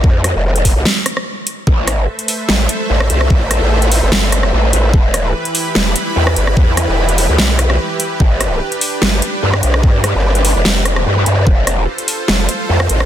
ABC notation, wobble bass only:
X:1
M:4/4
L:1/16
Q:"Swing 16ths" 1/4=147
K:Am
V:1 name="Wobble bass" clef=bass
F,,3 F,,,4 C,, z8 | A,,,4 z4 A,,,2 z2 A,,,2 C,,2 | A,,,3 A,,,4 G,,, G,,,4 A,,,2 A,,,2 | E,,,4 z4 E,,,2 z2 E,,2 G,,,2 |
E,,3 E,,,4 D,, B,,,4 z4 | G,,,4 z4 G,,,2 z2 G,,2 B,,,2 | G,,3 G,,,4 F,,, F,,,4 G,,2 G,,2 | F,,,4 z4 F,,,2 z2 F,,2 A,,,2 |]